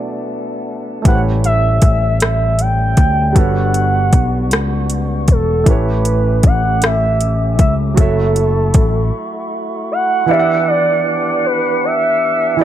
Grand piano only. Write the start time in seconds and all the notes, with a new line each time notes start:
Already playing: B2 F#3 A3 D4 E4 D5
1.02 A3 E4 G4
1.07 B4 C5
1.15 C#5
3.33 G3 D4 F#4
3.37 A4 B4 C#5
5.64 A3 E4 G4
5.69 B4 C#5
7.94 F#3 F#4 A4
7.99 C#5 E5
10.26 E3 E4 G4
10.31 D5 F5
10.39 F#5
12.57 E3 E4 G4